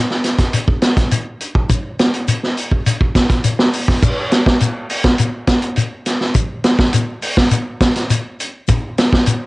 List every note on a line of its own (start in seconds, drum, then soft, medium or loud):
0.10 snare soft
0.24 snare soft
0.24 closed hi-hat soft
0.24 shekere soft
0.38 kick medium
0.38 snare soft
0.38 closed hi-hat medium
0.53 closed hi-hat medium
0.53 shekere medium
0.68 kick medium
0.82 snare medium
0.82 closed hi-hat medium
0.82 shekere soft
0.97 kick medium
0.97 snare soft
0.97 closed hi-hat soft
1.11 closed hi-hat medium
1.11 shekere medium
1.41 closed hi-hat soft
1.41 shekere soft
1.55 kick medium
1.70 kick medium
1.70 closed hi-hat medium
1.70 shekere medium
1.99 snare medium
1.99 closed hi-hat medium
1.99 shekere soft
2.14 closed hi-hat medium
2.28 closed hi-hat medium
2.28 shekere medium
2.43 snare soft
2.57 open hi-hat medium
2.57 shekere soft
2.71 kick medium
2.71 closed hi-hat medium
2.86 closed hi-hat medium
2.86 shekere medium
3.01 kick medium
3.15 kick medium
3.15 snare medium
3.15 closed hi-hat medium
3.15 shekere soft
3.30 kick medium
3.30 snare soft
3.30 closed hi-hat soft
3.44 closed hi-hat medium
3.44 shekere medium
3.59 snare medium
3.73 open hi-hat medium
3.73 shekere soft
3.88 kick medium
3.88 snare soft
4.03 kick loud
4.03 crash medium
4.03 shekere medium
4.31 snare medium
4.31 closed hi-hat medium
4.31 shekere soft
4.46 kick medium
4.46 snare medium
4.60 closed hi-hat medium
4.60 shekere medium
4.90 open hi-hat medium
4.90 shekere soft
5.04 kick medium
5.04 snare medium
5.04 closed hi-hat soft
5.18 closed hi-hat medium
5.18 shekere medium
5.47 kick medium
5.47 snare medium
5.47 closed hi-hat medium
5.47 shekere soft
5.62 closed hi-hat soft
5.76 closed hi-hat medium
5.76 shekere medium
6.06 snare soft
6.06 closed hi-hat medium
6.06 shekere soft
6.21 snare soft
6.35 kick medium
6.35 closed hi-hat medium
6.35 shekere medium
6.64 snare medium
6.64 closed hi-hat medium
6.64 shekere soft
6.79 kick medium
6.79 snare medium
6.93 closed hi-hat medium
6.93 shekere medium
7.22 open hi-hat medium
7.22 shekere soft
7.37 kick medium
7.37 snare medium
7.51 closed hi-hat medium
7.51 shekere medium
7.81 kick medium
7.81 snare medium
7.81 closed hi-hat medium
7.81 shekere soft
7.96 snare soft
7.96 closed hi-hat medium
8.10 closed hi-hat medium
8.10 shekere medium
8.40 closed hi-hat medium
8.40 shekere soft
8.68 kick medium
8.68 closed hi-hat medium
8.68 shekere loud
8.98 snare medium
8.98 closed hi-hat medium
8.98 shekere soft
9.13 kick medium
9.13 snare medium
9.26 closed hi-hat medium
9.26 shekere medium